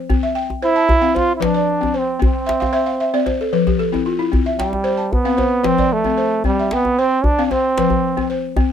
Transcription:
Already playing: C5
0.09 C4, djembe bass
0.23 E5
0.35 G5
0.50 djembe slap, djembe tone
0.63 E4 C5
0.76 A5
0.89 djembe bass
1.01 C4 F5
1.15 F4 C5, djembe tone
1.36 E4
1.40 F3 D4 B4, djembe slap
1.54 D5, djembe slap
1.70 djembe slap
1.81 C4, djembe slap, djembe tone
1.94 C5
1.98 C4
2.20 C4, djembe bass
2.47 E5, djembe slap
2.60 F5, djembe slap, djembe tone
2.73 C5 E5
2.86 F5
3.00 E5
3.14 C4 D5
3.26 C5, djembe tone
3.41 A4, djembe slap
3.53 F3 B4
3.67 G4, djembe slap, djembe bass
3.79 A4, djembe slap
3.92 C4 E4, djembe slap, djembe tone
4.06 F4
4.19 E4
4.32 C4, djembe bass
4.46 E5
4.58 G3 G5, djembe slap
4.73 djembe slap, djembe tone
4.84 C5
4.97 A5
5.13 B3, djembe bass
5.25 C4 F5
5.38 C5, djembe tone
5.53 djembe slap
5.63 F3 C4 B4, djembe slap
5.78 D5, djembe slap, djembe bass
5.91 A3, djembe slap
6.04 C4, djembe slap, djembe tone
6.18 C5
6.44 G3 C4, djembe slap, djembe bass
6.59 E5
6.71 B3 G5, djembe slap
6.85 djembe tone
6.98 C4 C5, djembe slap
7.24 D4, djembe bass
7.38 C4 F5, djembe slap
7.45 D4
7.51 C4 C5, djembe tone
7.78 F3 B4, djembe slap
7.90 djembe bass
8.17 C4, djembe slap, djembe tone
8.30 C5, djembe slap
8.56 C4, djembe slap, djembe tone, djembe bass

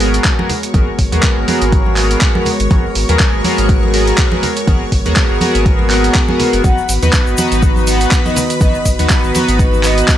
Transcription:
Already playing: G#1 G#3 B3 F#4 A#4 C#5 C#6
0.00 B3 F#4 G#4 A#4, open hi-hat
0.14 closed hi-hat
0.24 kick, clap, closed hi-hat
0.38 B3 F#4 G#4 A#4, high conga
0.50 open hi-hat, low conga
0.63 closed hi-hat
0.74 G#1 B3 F#4 G#4 A#4, kick, closed hi-hat, high conga
0.99 G#1, kick, open hi-hat
1.12 D#2 B3 F#4 G#4 A#4, closed hi-hat, high conga
1.23 kick, clap, closed hi-hat
1.37 G#1
1.47 B3 F#4 G#4 A#4, open hi-hat, high conga
1.61 G#1, closed hi-hat
1.72 kick, closed hi-hat
1.86 high conga
1.97 B3 F#4 G#4 A#4, clap, open hi-hat
2.11 closed hi-hat
2.21 kick, clap, closed hi-hat
2.35 B3 F#4 G#4 A#4, high conga
2.45 open hi-hat, low conga
2.60 G#1, closed hi-hat
2.70 G#1 B3 F#4 G#4 A#4, kick, closed hi-hat, high conga
2.95 G#1, open hi-hat
3.09 D#2 B3 F#4 G#4 A#4, closed hi-hat, high conga
3.19 kick, clap, closed hi-hat
3.34 G#1
3.44 B3 F#4 G#4 A#4, open hi-hat, high conga
3.58 G#1, closed hi-hat
3.69 kick, closed hi-hat
3.83 high conga
3.93 B3 F#4 G#4 A#4, open hi-hat
4.07 closed hi-hat
4.18 kick, clap, closed hi-hat
4.32 B3 F#4 G#4 A#4, high conga
4.43 open hi-hat, low conga
4.57 closed hi-hat
4.67 G#1 B3 F#4 G#4 A#4, kick, closed hi-hat, high conga
4.92 G#1, kick, open hi-hat
5.05 D#2 B3 F#4 G#4 A#4, closed hi-hat, high conga
5.16 kick, clap, closed hi-hat
5.30 G#1
5.41 B3 F#4 G#4 A#4, open hi-hat, high conga
5.55 G#1, closed hi-hat
5.66 kick, closed hi-hat
5.79 high conga
5.90 B3 F#4 G#4 A#4, clap, open hi-hat
6.04 closed hi-hat
6.15 kick, clap, closed hi-hat
6.28 B3 F#4 G#4 A#4, high conga
6.40 open hi-hat, low conga
6.53 F#1, closed hi-hat
6.64 G#1 D#3 B3 D#4 F#4 B4 F#5 B5, kick, closed hi-hat, high conga, shaker
6.78 shaker
6.89 G#1, open hi-hat, shaker
7.02 D#2 B3 D#4 F#4 B4, closed hi-hat, high conga, shaker
7.13 kick, clap, closed hi-hat, shaker
7.27 G#1, shaker
7.38 B3 D#4 F#4 B4, open hi-hat, high conga, shaker
7.52 G#1, closed hi-hat, shaker
7.62 kick, closed hi-hat, shaker
7.76 high conga, shaker
7.87 B3 D#4 F#4 B4 F#5, open hi-hat, shaker
8.01 closed hi-hat, shaker
8.11 kick, clap, closed hi-hat, shaker
8.25 B3 D#4 F#4 B4 D#5, high conga, shaker
8.36 open hi-hat, low conga, shaker
8.50 closed hi-hat, shaker
8.61 G#1 B3 D#4 F#4 B4 D#5, kick, closed hi-hat, high conga, shaker
8.74 shaker
8.85 G#1, kick, open hi-hat, shaker
8.99 D#2 B3 D#4 F#4 B4, closed hi-hat, high conga, shaker
9.10 kick, clap, closed hi-hat, shaker
9.24 G#1, shaker
9.34 B3 D#4 F#4 B4, open hi-hat, high conga, shaker
9.48 G#1, closed hi-hat, shaker
9.59 kick, closed hi-hat, shaker
9.73 high conga, shaker
9.83 B3 D#4 F#4 B4 D#5, clap, open hi-hat, shaker
9.98 closed hi-hat, shaker
10.08 kick, clap, closed hi-hat, shaker

